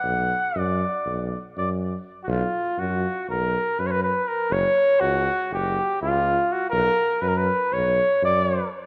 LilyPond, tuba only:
\new Staff \with { instrumentName = "Tuba" } { \clef bass \time 9/8 \tempo 4. = 81 b,,4 fis,4 b,,4 fis,4. | b,,8 r8 fis,4 b,,4 fis,4. | fis,,8 r8 cis,4 fis,,4 cis,4. | b,,8 r8 fis,4 b,,4 fis,4. | }